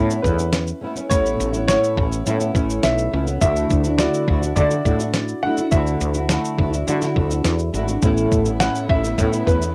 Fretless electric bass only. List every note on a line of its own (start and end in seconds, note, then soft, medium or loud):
0.00 0.19 A2 loud
0.24 0.71 E2 medium
1.11 1.34 A1 medium
1.40 1.75 A1 medium
1.98 2.21 A1 loud
2.27 2.50 A2 loud
2.55 2.79 A1 medium
2.84 3.08 B1 medium
3.13 3.37 C#2 medium
3.42 3.65 D2 loud
3.71 4.06 D2 loud
4.28 4.52 D2 medium
4.56 4.80 D3 loud
4.85 5.33 A2 medium
5.72 5.96 D2 loud
6.01 6.37 D2 loud
6.59 6.83 D2 medium
6.88 7.18 D3 loud
7.16 7.40 D2 medium
7.45 7.69 E2 medium
7.74 7.98 G#1 medium
8.03 8.27 A1 loud
8.32 8.67 A1 medium
8.89 9.13 A1 loud
9.18 9.42 A2 loud
9.48 9.75 E2 medium